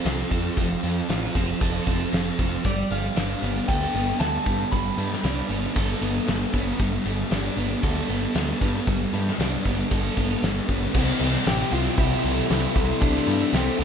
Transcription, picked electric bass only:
0, 0, Header, 1, 2, 480
1, 0, Start_track
1, 0, Key_signature, 0, "major"
1, 0, Tempo, 518135
1, 532, Time_signature, 4, 2, 24, 8
1, 12822, End_track
2, 0, Start_track
2, 0, Title_t, "Picked electric bass"
2, 0, Program_c, 0, 34
2, 48, Note_on_c, 0, 36, 86
2, 206, Note_off_c, 0, 36, 0
2, 291, Note_on_c, 0, 41, 81
2, 448, Note_off_c, 0, 41, 0
2, 531, Note_on_c, 0, 29, 88
2, 688, Note_off_c, 0, 29, 0
2, 772, Note_on_c, 0, 41, 85
2, 929, Note_off_c, 0, 41, 0
2, 1012, Note_on_c, 0, 33, 86
2, 1169, Note_off_c, 0, 33, 0
2, 1254, Note_on_c, 0, 29, 89
2, 1410, Note_off_c, 0, 29, 0
2, 1497, Note_on_c, 0, 29, 88
2, 1652, Note_off_c, 0, 29, 0
2, 1731, Note_on_c, 0, 29, 81
2, 1889, Note_off_c, 0, 29, 0
2, 1971, Note_on_c, 0, 29, 85
2, 2128, Note_off_c, 0, 29, 0
2, 2213, Note_on_c, 0, 29, 77
2, 2370, Note_off_c, 0, 29, 0
2, 2453, Note_on_c, 0, 31, 91
2, 2610, Note_off_c, 0, 31, 0
2, 2692, Note_on_c, 0, 31, 84
2, 2849, Note_off_c, 0, 31, 0
2, 2933, Note_on_c, 0, 31, 84
2, 3090, Note_off_c, 0, 31, 0
2, 3171, Note_on_c, 0, 31, 85
2, 3328, Note_off_c, 0, 31, 0
2, 3419, Note_on_c, 0, 38, 84
2, 3573, Note_off_c, 0, 38, 0
2, 3652, Note_on_c, 0, 31, 83
2, 3809, Note_off_c, 0, 31, 0
2, 3892, Note_on_c, 0, 38, 84
2, 4049, Note_off_c, 0, 38, 0
2, 4137, Note_on_c, 0, 43, 84
2, 4292, Note_off_c, 0, 43, 0
2, 4375, Note_on_c, 0, 31, 94
2, 4531, Note_off_c, 0, 31, 0
2, 4610, Note_on_c, 0, 43, 85
2, 4768, Note_off_c, 0, 43, 0
2, 4851, Note_on_c, 0, 36, 90
2, 5009, Note_off_c, 0, 36, 0
2, 5087, Note_on_c, 0, 31, 85
2, 5245, Note_off_c, 0, 31, 0
2, 5339, Note_on_c, 0, 31, 85
2, 5494, Note_off_c, 0, 31, 0
2, 5573, Note_on_c, 0, 31, 85
2, 5730, Note_off_c, 0, 31, 0
2, 5817, Note_on_c, 0, 31, 91
2, 5972, Note_off_c, 0, 31, 0
2, 6057, Note_on_c, 0, 31, 85
2, 6212, Note_off_c, 0, 31, 0
2, 6295, Note_on_c, 0, 31, 89
2, 6452, Note_off_c, 0, 31, 0
2, 6537, Note_on_c, 0, 31, 93
2, 6693, Note_off_c, 0, 31, 0
2, 6775, Note_on_c, 0, 31, 85
2, 6932, Note_off_c, 0, 31, 0
2, 7012, Note_on_c, 0, 31, 90
2, 7170, Note_off_c, 0, 31, 0
2, 7257, Note_on_c, 0, 38, 87
2, 7413, Note_off_c, 0, 38, 0
2, 7495, Note_on_c, 0, 31, 87
2, 7652, Note_off_c, 0, 31, 0
2, 7737, Note_on_c, 0, 38, 87
2, 7893, Note_off_c, 0, 38, 0
2, 7979, Note_on_c, 0, 43, 83
2, 8135, Note_off_c, 0, 43, 0
2, 8220, Note_on_c, 0, 31, 92
2, 8376, Note_off_c, 0, 31, 0
2, 8459, Note_on_c, 0, 43, 85
2, 8615, Note_off_c, 0, 43, 0
2, 8696, Note_on_c, 0, 36, 83
2, 8853, Note_off_c, 0, 36, 0
2, 8944, Note_on_c, 0, 31, 90
2, 9098, Note_off_c, 0, 31, 0
2, 9185, Note_on_c, 0, 31, 87
2, 9339, Note_off_c, 0, 31, 0
2, 9424, Note_on_c, 0, 31, 85
2, 9578, Note_off_c, 0, 31, 0
2, 9658, Note_on_c, 0, 31, 87
2, 9815, Note_off_c, 0, 31, 0
2, 9902, Note_on_c, 0, 31, 82
2, 10057, Note_off_c, 0, 31, 0
2, 10143, Note_on_c, 0, 36, 100
2, 10286, Note_off_c, 0, 36, 0
2, 10377, Note_on_c, 0, 36, 89
2, 10521, Note_off_c, 0, 36, 0
2, 10621, Note_on_c, 0, 33, 92
2, 10764, Note_off_c, 0, 33, 0
2, 10859, Note_on_c, 0, 36, 94
2, 11002, Note_off_c, 0, 36, 0
2, 11099, Note_on_c, 0, 36, 92
2, 11243, Note_off_c, 0, 36, 0
2, 11343, Note_on_c, 0, 36, 90
2, 11485, Note_off_c, 0, 36, 0
2, 11583, Note_on_c, 0, 36, 97
2, 11725, Note_off_c, 0, 36, 0
2, 11819, Note_on_c, 0, 36, 87
2, 11962, Note_off_c, 0, 36, 0
2, 12060, Note_on_c, 0, 36, 103
2, 12202, Note_off_c, 0, 36, 0
2, 12297, Note_on_c, 0, 43, 93
2, 12440, Note_off_c, 0, 43, 0
2, 12533, Note_on_c, 0, 36, 94
2, 12677, Note_off_c, 0, 36, 0
2, 12776, Note_on_c, 0, 36, 99
2, 12822, Note_off_c, 0, 36, 0
2, 12822, End_track
0, 0, End_of_file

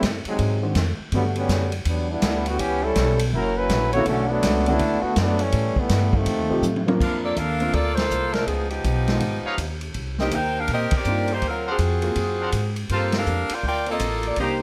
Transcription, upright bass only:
0, 0, Header, 1, 3, 480
1, 0, Start_track
1, 0, Tempo, 368098
1, 1467, Time_signature, 4, 2, 24, 8
1, 19066, End_track
2, 0, Start_track
2, 0, Title_t, "Upright bass"
2, 0, Program_c, 0, 32
2, 31, Note_on_c, 0, 42, 93
2, 312, Note_off_c, 0, 42, 0
2, 508, Note_on_c, 0, 44, 84
2, 973, Note_off_c, 0, 44, 0
2, 980, Note_on_c, 0, 41, 92
2, 1265, Note_off_c, 0, 41, 0
2, 1460, Note_on_c, 0, 43, 75
2, 1928, Note_off_c, 0, 43, 0
2, 1939, Note_on_c, 0, 42, 86
2, 2407, Note_off_c, 0, 42, 0
2, 2419, Note_on_c, 0, 40, 88
2, 2887, Note_off_c, 0, 40, 0
2, 2896, Note_on_c, 0, 38, 90
2, 3365, Note_off_c, 0, 38, 0
2, 3380, Note_on_c, 0, 37, 79
2, 3846, Note_off_c, 0, 37, 0
2, 3861, Note_on_c, 0, 35, 97
2, 4327, Note_off_c, 0, 35, 0
2, 4341, Note_on_c, 0, 30, 85
2, 4806, Note_off_c, 0, 30, 0
2, 4824, Note_on_c, 0, 34, 90
2, 5287, Note_off_c, 0, 34, 0
2, 5295, Note_on_c, 0, 35, 78
2, 5762, Note_off_c, 0, 35, 0
2, 5775, Note_on_c, 0, 37, 97
2, 6241, Note_off_c, 0, 37, 0
2, 6250, Note_on_c, 0, 38, 87
2, 6535, Note_off_c, 0, 38, 0
2, 6732, Note_on_c, 0, 42, 90
2, 7199, Note_off_c, 0, 42, 0
2, 7212, Note_on_c, 0, 45, 86
2, 7496, Note_off_c, 0, 45, 0
2, 7686, Note_on_c, 0, 43, 89
2, 8156, Note_off_c, 0, 43, 0
2, 8167, Note_on_c, 0, 41, 81
2, 8327, Note_off_c, 0, 41, 0
2, 8327, Note_on_c, 0, 39, 57
2, 8470, Note_off_c, 0, 39, 0
2, 8478, Note_on_c, 0, 36, 60
2, 8623, Note_off_c, 0, 36, 0
2, 8631, Note_on_c, 0, 45, 81
2, 9108, Note_off_c, 0, 45, 0
2, 9133, Note_on_c, 0, 41, 84
2, 9596, Note_off_c, 0, 41, 0
2, 9604, Note_on_c, 0, 39, 92
2, 10075, Note_off_c, 0, 39, 0
2, 10086, Note_on_c, 0, 38, 85
2, 10557, Note_off_c, 0, 38, 0
2, 10573, Note_on_c, 0, 36, 79
2, 11037, Note_off_c, 0, 36, 0
2, 11044, Note_on_c, 0, 37, 74
2, 11516, Note_off_c, 0, 37, 0
2, 11531, Note_on_c, 0, 35, 92
2, 12000, Note_off_c, 0, 35, 0
2, 12008, Note_on_c, 0, 32, 84
2, 12295, Note_off_c, 0, 32, 0
2, 12487, Note_on_c, 0, 39, 81
2, 12959, Note_off_c, 0, 39, 0
2, 12972, Note_on_c, 0, 36, 79
2, 13439, Note_off_c, 0, 36, 0
2, 13447, Note_on_c, 0, 39, 80
2, 13920, Note_off_c, 0, 39, 0
2, 13933, Note_on_c, 0, 46, 89
2, 14219, Note_off_c, 0, 46, 0
2, 14407, Note_on_c, 0, 43, 77
2, 14880, Note_off_c, 0, 43, 0
2, 14889, Note_on_c, 0, 38, 76
2, 15362, Note_off_c, 0, 38, 0
2, 15372, Note_on_c, 0, 41, 87
2, 15843, Note_off_c, 0, 41, 0
2, 15855, Note_on_c, 0, 42, 80
2, 16325, Note_off_c, 0, 42, 0
2, 16333, Note_on_c, 0, 44, 85
2, 16805, Note_off_c, 0, 44, 0
2, 16816, Note_on_c, 0, 43, 76
2, 17287, Note_off_c, 0, 43, 0
2, 17296, Note_on_c, 0, 41, 84
2, 17583, Note_off_c, 0, 41, 0
2, 17779, Note_on_c, 0, 38, 80
2, 18249, Note_off_c, 0, 38, 0
2, 18255, Note_on_c, 0, 33, 82
2, 18727, Note_off_c, 0, 33, 0
2, 18738, Note_on_c, 0, 36, 82
2, 19066, Note_off_c, 0, 36, 0
2, 19066, End_track
3, 0, Start_track
3, 0, Title_t, "Muted upright bass strokes"
3, 329, Note_on_c, 9, 29, 39
3, 459, Note_off_c, 9, 29, 0
3, 1292, Note_on_c, 9, 29, 36
3, 1423, Note_off_c, 9, 29, 0
3, 6556, Note_on_c, 9, 29, 43
3, 6686, Note_off_c, 9, 29, 0
3, 7514, Note_on_c, 9, 29, 44
3, 7644, Note_off_c, 9, 29, 0
3, 12308, Note_on_c, 9, 29, 37
3, 12438, Note_off_c, 9, 29, 0
3, 14238, Note_on_c, 9, 29, 41
3, 14369, Note_off_c, 9, 29, 0
3, 17606, Note_on_c, 9, 29, 37
3, 17737, Note_off_c, 9, 29, 0
3, 19066, End_track
0, 0, End_of_file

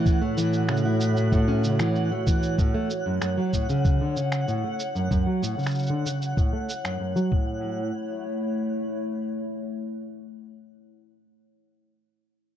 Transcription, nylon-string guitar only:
0, 0, Header, 1, 2, 480
1, 0, Start_track
1, 0, Key_signature, 3, "major"
1, 0, Tempo, 631579
1, 43, Time_signature, 4, 2, 24, 8
1, 9549, End_track
2, 0, Start_track
2, 0, Title_t, "Nylon-string guitar"
2, 0, Program_c, 0, 24
2, 0, Note_on_c, 0, 52, 99
2, 152, Note_off_c, 0, 52, 0
2, 163, Note_on_c, 0, 57, 70
2, 271, Note_off_c, 0, 57, 0
2, 284, Note_on_c, 0, 52, 71
2, 511, Note_off_c, 0, 52, 0
2, 524, Note_on_c, 0, 49, 73
2, 631, Note_off_c, 0, 49, 0
2, 647, Note_on_c, 0, 64, 71
2, 759, Note_off_c, 0, 64, 0
2, 885, Note_on_c, 0, 45, 68
2, 992, Note_off_c, 0, 45, 0
2, 1006, Note_on_c, 0, 45, 93
2, 1112, Note_off_c, 0, 45, 0
2, 1125, Note_on_c, 0, 61, 95
2, 1232, Note_off_c, 0, 61, 0
2, 1246, Note_on_c, 0, 49, 72
2, 1352, Note_off_c, 0, 49, 0
2, 1367, Note_on_c, 0, 52, 93
2, 1593, Note_off_c, 0, 52, 0
2, 1607, Note_on_c, 0, 57, 66
2, 1713, Note_off_c, 0, 57, 0
2, 1726, Note_on_c, 0, 52, 71
2, 1952, Note_off_c, 0, 52, 0
2, 1966, Note_on_c, 0, 45, 74
2, 2072, Note_off_c, 0, 45, 0
2, 2085, Note_on_c, 0, 57, 73
2, 2198, Note_off_c, 0, 57, 0
2, 2326, Note_on_c, 0, 42, 69
2, 2432, Note_off_c, 0, 42, 0
2, 2446, Note_on_c, 0, 42, 82
2, 2552, Note_off_c, 0, 42, 0
2, 2565, Note_on_c, 0, 54, 95
2, 2672, Note_off_c, 0, 54, 0
2, 2688, Note_on_c, 0, 45, 63
2, 2793, Note_off_c, 0, 45, 0
2, 2808, Note_on_c, 0, 49, 97
2, 3033, Note_off_c, 0, 49, 0
2, 3046, Note_on_c, 0, 50, 67
2, 3152, Note_off_c, 0, 50, 0
2, 3167, Note_on_c, 0, 49, 69
2, 3393, Note_off_c, 0, 49, 0
2, 3406, Note_on_c, 0, 45, 72
2, 3512, Note_off_c, 0, 45, 0
2, 3526, Note_on_c, 0, 57, 66
2, 3638, Note_off_c, 0, 57, 0
2, 3764, Note_on_c, 0, 42, 66
2, 3871, Note_off_c, 0, 42, 0
2, 3883, Note_on_c, 0, 42, 88
2, 3991, Note_off_c, 0, 42, 0
2, 4003, Note_on_c, 0, 54, 84
2, 4110, Note_off_c, 0, 54, 0
2, 4122, Note_on_c, 0, 45, 69
2, 4230, Note_off_c, 0, 45, 0
2, 4240, Note_on_c, 0, 49, 81
2, 4469, Note_off_c, 0, 49, 0
2, 4481, Note_on_c, 0, 50, 68
2, 4590, Note_off_c, 0, 50, 0
2, 4604, Note_on_c, 0, 49, 62
2, 4831, Note_off_c, 0, 49, 0
2, 4843, Note_on_c, 0, 45, 67
2, 4951, Note_off_c, 0, 45, 0
2, 4962, Note_on_c, 0, 57, 63
2, 5076, Note_off_c, 0, 57, 0
2, 5201, Note_on_c, 0, 42, 61
2, 5310, Note_off_c, 0, 42, 0
2, 5320, Note_on_c, 0, 42, 81
2, 5429, Note_off_c, 0, 42, 0
2, 5440, Note_on_c, 0, 54, 87
2, 5549, Note_off_c, 0, 54, 0
2, 5560, Note_on_c, 0, 45, 79
2, 6011, Note_off_c, 0, 45, 0
2, 9549, End_track
0, 0, End_of_file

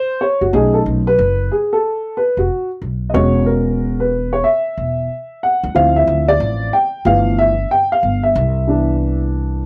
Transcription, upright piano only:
0, 0, Header, 1, 2, 480
1, 0, Start_track
1, 0, Tempo, 652174
1, 392, Time_signature, 4, 2, 24, 8
1, 7108, End_track
2, 0, Start_track
2, 0, Title_t, "Upright piano"
2, 0, Program_c, 0, 0
2, 0, Note_on_c, 0, 72, 112
2, 154, Note_on_c, 0, 73, 86
2, 162, Note_off_c, 0, 72, 0
2, 302, Note_on_c, 0, 66, 73
2, 309, Note_off_c, 0, 73, 0
2, 384, Note_off_c, 0, 66, 0
2, 386, Note_on_c, 0, 57, 58
2, 391, Note_on_c, 0, 61, 47
2, 395, Note_on_c, 0, 63, 68
2, 396, Note_on_c, 0, 68, 94
2, 535, Note_off_c, 0, 68, 0
2, 544, Note_on_c, 0, 69, 80
2, 598, Note_off_c, 0, 69, 0
2, 732, Note_off_c, 0, 57, 0
2, 734, Note_off_c, 0, 61, 0
2, 737, Note_off_c, 0, 63, 0
2, 789, Note_on_c, 0, 71, 104
2, 1115, Note_on_c, 0, 68, 75
2, 1124, Note_off_c, 0, 71, 0
2, 1269, Note_off_c, 0, 68, 0
2, 1270, Note_on_c, 0, 69, 82
2, 1598, Note_on_c, 0, 71, 85
2, 1605, Note_off_c, 0, 69, 0
2, 1751, Note_off_c, 0, 71, 0
2, 1753, Note_on_c, 0, 66, 69
2, 1972, Note_off_c, 0, 66, 0
2, 2279, Note_on_c, 0, 75, 62
2, 2306, Note_on_c, 0, 56, 56
2, 2312, Note_on_c, 0, 61, 51
2, 2312, Note_on_c, 0, 73, 95
2, 2314, Note_off_c, 0, 75, 0
2, 2315, Note_on_c, 0, 66, 65
2, 2549, Note_on_c, 0, 70, 78
2, 2559, Note_off_c, 0, 73, 0
2, 2945, Note_on_c, 0, 71, 79
2, 2953, Note_off_c, 0, 70, 0
2, 2999, Note_off_c, 0, 56, 0
2, 3002, Note_off_c, 0, 61, 0
2, 3004, Note_off_c, 0, 66, 0
2, 3186, Note_on_c, 0, 73, 86
2, 3191, Note_off_c, 0, 71, 0
2, 3268, Note_on_c, 0, 76, 98
2, 3275, Note_off_c, 0, 73, 0
2, 3998, Note_on_c, 0, 78, 92
2, 4011, Note_off_c, 0, 76, 0
2, 4218, Note_off_c, 0, 78, 0
2, 4228, Note_on_c, 0, 53, 58
2, 4233, Note_on_c, 0, 60, 55
2, 4237, Note_on_c, 0, 64, 59
2, 4237, Note_on_c, 0, 77, 96
2, 4376, Note_off_c, 0, 77, 0
2, 4388, Note_on_c, 0, 76, 89
2, 4625, Note_on_c, 0, 74, 110
2, 4633, Note_off_c, 0, 76, 0
2, 4920, Note_off_c, 0, 53, 0
2, 4923, Note_off_c, 0, 60, 0
2, 4925, Note_off_c, 0, 64, 0
2, 4954, Note_on_c, 0, 79, 91
2, 4962, Note_off_c, 0, 74, 0
2, 5190, Note_on_c, 0, 53, 55
2, 5193, Note_on_c, 0, 57, 52
2, 5198, Note_on_c, 0, 59, 57
2, 5198, Note_on_c, 0, 77, 104
2, 5200, Note_off_c, 0, 79, 0
2, 5200, Note_on_c, 0, 52, 68
2, 5436, Note_on_c, 0, 76, 97
2, 5442, Note_off_c, 0, 77, 0
2, 5534, Note_off_c, 0, 53, 0
2, 5536, Note_off_c, 0, 57, 0
2, 5538, Note_off_c, 0, 59, 0
2, 5539, Note_off_c, 0, 52, 0
2, 5657, Note_off_c, 0, 76, 0
2, 5676, Note_on_c, 0, 79, 102
2, 5830, Note_off_c, 0, 79, 0
2, 5830, Note_on_c, 0, 77, 95
2, 6050, Note_off_c, 0, 77, 0
2, 6060, Note_on_c, 0, 76, 83
2, 6385, Note_on_c, 0, 52, 55
2, 6387, Note_on_c, 0, 59, 49
2, 6393, Note_on_c, 0, 62, 62
2, 6752, Note_off_c, 0, 76, 0
2, 7079, Note_off_c, 0, 52, 0
2, 7080, Note_off_c, 0, 59, 0
2, 7083, Note_off_c, 0, 62, 0
2, 7108, End_track
0, 0, End_of_file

